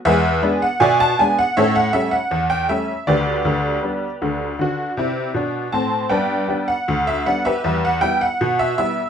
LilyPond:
<<
  \new Staff \with { instrumentName = "Honky-tonk piano" } { \time 2/4 \key g \major \tempo 4 = 79 <gis' b' e''>8. fis''16 <d'' e'' gis''>16 a''16 gis''16 fis''16 | <a' cis'' e''>16 fis''16 e''16 fis''8 g''16 e''8 | <g' b' d''>2~ | <g' b' d''>4. a''8 |
<b' d'' g''>8. fis''8 e''16 fis''16 <g' b' e''>16~ | <g' b' e''>16 fis''16 g''16 fis''8 e''16 e''8 | }
  \new Staff \with { instrumentName = "Honky-tonk piano" } { \clef bass \time 2/4 \key g \major <e, gis>8 <gis b d'>8 b,8 <gis b d'>8 | <a, cis'>8 <g a cis'>8 e,8 <g a cis'>8 | <d, d>8 <d, d>8 <g b d'>8 <d, d>8 | <d fis'>8 <c e'>8 <b, d'>8 <a, c'>8 |
<g, b>8 <g b d'>8 d,8 <g b d'>8 | <e, g>8 <g b e'>8 b,8 <g b e'>8 | }
>>